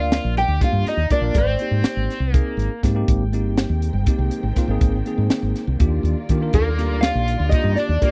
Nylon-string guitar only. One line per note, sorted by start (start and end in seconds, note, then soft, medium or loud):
0.00 0.37 F5 medium
0.38 0.62 G5 medium
0.64 0.88 F5 medium
0.88 1.10 D#5 medium
1.11 1.36 D5 medium
1.36 2.32 C5 medium
2.32 2.80 A#4 medium
6.54 7.05 A#4 medium
7.01 7.49 F5 loud
7.49 7.75 D#5 medium
7.75 8.02 D5 medium
8.02 8.11 A#4 medium